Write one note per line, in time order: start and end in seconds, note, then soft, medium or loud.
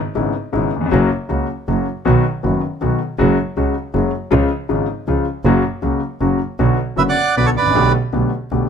0.15 0.32 G#1 medium
0.15 0.32 G#2 medium
0.15 0.32 C#3 soft
0.15 0.32 G#3 soft
0.15 0.32 B3 soft
0.15 0.32 E4 medium
0.52 0.70 G#1 medium
0.52 0.71 G#1 medium
0.52 0.70 G#2 medium
0.52 0.70 C#3 soft
0.52 0.70 G#3 soft
0.52 0.70 B3 soft
0.52 0.70 E4 medium
0.76 0.82 D#2 soft
0.81 0.87 E2 medium
0.86 0.91 F2 medium
0.91 1.09 F#1 medium
0.91 1.08 F#2 medium
0.91 1.08 C#3 medium
0.91 1.08 F#3 medium
0.91 1.08 A#3 medium
0.91 1.08 F#4 medium
1.29 1.46 C#2 medium
1.29 1.47 C#2 medium
1.29 1.46 C#3 medium
1.29 1.46 F#3 soft
1.29 1.46 A#3 soft
1.29 1.46 F#4 medium
1.68 1.85 F#1 medium
1.68 1.85 F#2 soft
1.68 1.84 C#3 soft
1.68 1.85 F#3 soft
1.68 1.84 A#3 soft
1.68 1.85 F#4 soft
2.05 2.22 B1 medium
2.05 2.23 B1 medium
2.05 2.22 B2 medium
2.05 2.22 D#3 medium
2.05 2.22 F#3 medium
2.05 2.22 B3 medium
2.05 2.22 F#4 medium
2.43 2.60 F#1 soft
2.43 2.61 F#1 medium
2.43 2.60 F#2 soft
2.43 2.60 D#3 soft
2.43 2.60 F#3 soft
2.43 2.60 B3 soft
2.43 2.60 F#4 soft
2.81 2.98 B1 medium
2.81 2.98 B2 medium
2.81 2.98 D#3 soft
2.81 2.98 F#3 soft
2.81 2.98 B3 soft
2.81 2.98 F#4 soft
3.18 3.36 F#1 medium
3.18 3.35 F#2 medium
3.18 3.35 C#3 medium
3.18 3.35 F#3 medium
3.18 3.36 G#3 medium
3.18 3.36 F#4 medium
3.57 3.73 C#2 medium
3.57 3.73 C#3 medium
3.57 3.73 F#3 soft
3.57 3.73 G#3 soft
3.57 3.73 F#4 medium
3.94 4.11 F#1 medium
3.94 4.10 F#2 medium
3.94 4.10 C#3 soft
3.94 4.10 F#3 medium
3.94 4.10 G#3 soft
3.94 4.10 F#4 soft
4.31 4.48 C#2 medium
4.31 4.48 C#2 loud
4.31 4.48 C#3 medium
4.31 4.47 F3 medium
4.31 4.48 G#3 medium
4.31 4.48 F4 medium
4.69 4.85 G#1 medium
4.69 4.86 G#1 medium
4.69 4.85 G#2 medium
4.69 4.85 C#3 soft
4.69 4.85 F3 soft
4.69 4.86 G#3 soft
4.69 4.85 F4 medium
5.07 5.24 C#2 medium
5.07 5.24 C#3 medium
5.07 5.23 F3 soft
5.07 5.24 G#3 soft
5.07 5.24 F4 medium
5.45 5.61 F#1 medium
5.45 5.61 F#2 medium
5.45 5.61 C#3 medium
5.45 5.61 F#3 medium
5.45 5.61 A#3 medium
5.45 5.61 F#4 medium
5.82 5.99 C#2 soft
5.82 5.99 C#2 medium
5.82 5.99 C#3 medium
5.82 5.99 F#3 soft
5.82 5.99 A#3 soft
5.82 5.99 F#4 soft
6.20 6.38 F#1 medium
6.20 6.37 F#2 soft
6.20 6.38 C#3 soft
6.20 6.38 F#3 medium
6.20 6.38 A#3 soft
6.20 6.38 F#4 medium
6.59 6.76 B1 medium
6.59 6.76 B2 medium
6.59 6.76 D3 medium
6.59 6.76 F#3 medium
6.59 6.76 B3 medium
6.59 6.76 F#4 medium
6.96 7.14 F#1 soft
6.96 7.15 F#1 medium
6.96 7.13 F#2 soft
6.96 7.14 D3 soft
6.96 7.14 F#3 soft
6.96 7.14 B3 soft
6.96 7.14 F#4 soft
6.96 7.03 B4 medium
6.96 7.03 E5 medium
7.09 7.35 D5 medium
7.09 7.35 F#5 medium
7.37 7.53 B1 medium
7.37 7.53 B1 soft
7.37 7.53 B2 soft
7.37 7.53 D3 soft
7.37 7.53 F#3 soft
7.37 7.53 B3 soft
7.37 7.53 F#4 soft
7.37 7.46 B4 medium
7.37 7.47 D5 medium
7.46 7.50 A4 medium
7.46 7.50 C#5 medium
7.56 7.74 A1 soft
7.56 7.93 B4 medium
7.56 7.92 D5 medium
7.62 7.66 G#1 soft
7.66 7.71 A1 medium
7.66 7.75 A#1 medium
7.75 7.91 B1 medium
7.75 7.92 B1 medium
7.75 7.91 B2 medium
7.75 7.91 D3 medium
7.75 7.91 A3 medium
7.75 7.91 B3 medium
7.75 7.92 G4 medium
8.13 8.29 B1 soft
8.13 8.29 B1 medium
8.13 8.29 B2 soft
8.13 8.29 D3 soft
8.13 8.29 A3 soft
8.13 8.29 B3 soft
8.13 8.29 G4 soft
8.51 8.67 B1 medium
8.51 8.67 B1 soft
8.51 8.67 B2 soft
8.51 8.67 D3 soft
8.51 8.67 A3 soft
8.51 8.67 B3 soft
8.51 8.67 G4 soft